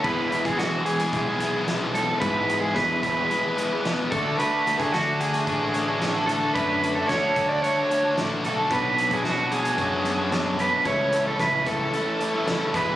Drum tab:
CC |x---------------|----------------|----------------|----------------|
HH |--xxx-xxx-x-x-x-|x-x-x-x-x-x-x-x-|x-xxx-xxx-x-x-x-|x-x-x-x-x-x-x-x-|
SD |----o-------o---|----o-------o---|----o-------o---|----o-------o---|
BD |o--o----o-------|o---o-o-------o-|---o----o-------|o---o-o---------|

CC |----------------|----------------|
HH |x-xxx-xxx-x-x-x-|x-x-x-x-x-x-x-x-|
SD |----o-------o---|----o-------o-o-|
BD |o--o----o-------|o---o-o-------o-|